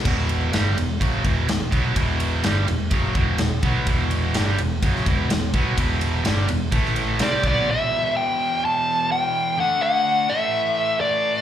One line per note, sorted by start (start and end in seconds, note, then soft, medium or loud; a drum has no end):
0.04 0.50 E1 medium
0.04 0.52 E2 medium
0.04 0.52 B2 medium
0.04 0.52 E3 medium
0.04 kick loud
0.04 ride medium
0.04 splash medium
0.29 ride medium
0.53 0.75 G1 medium
0.53 0.76 G2 medium
0.53 0.76 D3 medium
0.53 0.77 G3 loud
0.53 snare loud
0.53 ride medium
0.77 0.99 E1 medium
0.77 0.96 E2 medium
0.77 0.96 B2 medium
0.77 ride medium
1.01 1.23 F#1 medium
1.01 1.24 F#2 medium
1.01 1.24 C#3 medium
1.01 1.25 F#3 medium
1.01 kick loud
1.01 ride medium
1.25 1.47 E1 medium
1.25 1.48 E2 medium
1.25 1.48 B2 medium
1.25 1.49 E3 loud
1.25 kick loud
1.25 ride medium
1.49 1.71 E1 medium
1.49 1.68 E2 medium
1.49 1.68 B2 medium
1.49 snare loud
1.49 ride medium
1.72 1.95 B1 medium
1.72 1.96 B2 medium
1.72 1.96 F#3 medium
1.72 1.97 B3 medium
1.72 kick medium
1.72 ride medium
1.96 2.41 E1 medium
1.96 2.43 E2 medium
1.96 2.44 B2 medium
1.96 2.44 E3 loud
1.96 kick loud
1.96 ride loud
2.20 ride medium
2.43 2.66 G1 medium
2.43 2.67 G2 medium
2.43 2.67 D3 medium
2.43 2.68 G3 loud
2.43 snare loud
2.43 ride medium
2.67 2.90 E1 medium
2.67 2.86 E2 medium
2.67 2.87 B2 medium
2.67 ride medium
2.91 3.14 F#1 medium
2.91 3.14 F#2 medium
2.91 3.15 C#3 loud
2.91 3.15 F#3 medium
2.91 kick loud
2.91 ride medium
3.15 3.37 E1 medium
3.15 3.38 E2 medium
3.15 3.39 B2 medium
3.15 3.39 E3 medium
3.15 kick loud
3.15 ride medium
3.38 3.62 E1 medium
3.38 3.58 E2 medium
3.38 3.59 B2 medium
3.38 snare loud
3.38 ride medium
3.63 3.85 B1 medium
3.63 3.86 B2 medium
3.63 3.87 F#3 medium
3.63 3.87 B3 medium
3.63 kick loud
3.63 ride medium
3.87 4.31 E1 loud
3.87 4.34 E2 medium
3.87 4.35 B2 medium
3.87 4.35 E3 loud
3.87 kick loud
3.87 ride medium
4.11 ride medium
4.34 4.57 G1 medium
4.34 4.59 G2 medium
4.34 4.59 D3 medium
4.34 4.59 G3 medium
4.34 snare loud
4.34 ride medium
4.58 4.81 E1 medium
4.58 4.79 E2 medium
4.58 4.79 B2 medium
4.58 ride medium
4.82 5.04 F#1 medium
4.82 5.05 F#2 loud
4.82 5.06 C#3 medium
4.82 5.06 F#3 medium
4.82 kick loud
4.82 ride medium
4.96 snare soft
5.05 5.28 E1 medium
5.05 5.29 E2 medium
5.05 5.29 B2 medium
5.05 5.29 E3 medium
5.05 kick loud
5.05 ride medium
5.29 5.52 E1 medium
5.29 5.50 E2 medium
5.29 5.50 B2 medium
5.29 snare loud
5.29 ride medium
5.54 5.76 B1 medium
5.54 5.76 B2 medium
5.54 5.77 F#3 medium
5.54 5.78 B3 medium
5.54 kick medium
5.54 ride medium
5.77 6.22 E1 medium
5.77 6.24 E2 medium
5.77 6.24 B2 loud
5.77 6.25 E3 medium
5.77 kick loud
5.77 ride loud
6.01 ride medium
6.24 6.47 G1 medium
6.24 6.48 G2 loud
6.24 6.49 D3 medium
6.24 6.49 G3 medium
6.24 snare loud
6.24 ride medium
6.48 6.71 E1 medium
6.48 6.69 E2 medium
6.48 6.69 B2 medium
6.48 ride medium
6.72 7.17 A1 medium
6.72 7.20 A2 medium
6.72 7.20 E3 medium
6.72 7.20 A3 medium
6.72 kick loud
6.72 ride medium
6.85 snare soft
6.96 ride medium
7.19 7.42 C2 medium
7.19 7.44 C3 medium
7.19 7.44 G3 medium
7.19 7.44 C4 medium
7.19 7.46 D5 medium
7.19 snare loud
7.19 ride medium
7.43 7.66 B1 medium
7.43 7.67 B2 medium
7.43 7.67 F#3 medium
7.43 7.68 B3 loud
7.43 kick loud
7.43 ride medium
7.47 7.68 D5 medium
7.67 9.56 E2 medium
7.67 9.57 B2 medium
7.67 9.57 E3 loud
7.67 8.13 E5 medium
8.17 8.65 G5 medium
8.65 9.11 A5 medium
9.12 9.60 G5 medium
9.57 10.27 D3 loud
9.57 10.28 A3 loud
9.57 10.29 D4 loud
9.57 9.81 F#5 loud
9.83 10.31 F#5 loud
10.29 11.41 A2 loud
10.29 11.41 E3 loud
10.29 11.41 A3 loud
10.29 11.00 E5 medium
11.01 11.41 D5 loud